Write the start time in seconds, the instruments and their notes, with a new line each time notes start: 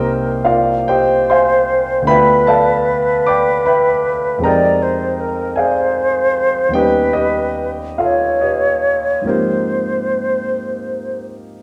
Already playing: grand piano C2 A#3 C4 D#4 G4 C5 D#5 G5, flute A#4
0.45 grand piano F4 A#4 D5 F5
0.88 grand piano G4 C5 D#5 G5, flute C5
1.30 grand piano C5 F5 G#5 C6
2.02 grand piano D2 A3 B3 D4
2.07 grand piano F4 B4 E5 G5 B5, flute B4
2.47 grand piano A4 D5 F5 A5
3.26 grand piano D5 G5 B5 D6
3.66 grand piano B4 E5 G5 B5
4.38 grand piano F2 G#3 C4
4.42 grand piano D#4 G4 A#4 D#5 G5 A#5, flute D5
4.83 flute C5
5.21 flute A#4
5.56 grand piano G#4 D5 F5 G#5, flute C5
6.69 grand piano D#2 G3 B3
6.73 grand piano C#4 D#4 G4 B4 D#5 G5, flute B4
7.13 grand piano G4 B4 D#5
7.98 grand piano F4 A4 C#5 F5, flute C#5
8.41 grand piano G4 B4 D#5
9.22 grand piano G#2 F3 A#3
9.26 grand piano C4 D#4 G4 A#4, flute C5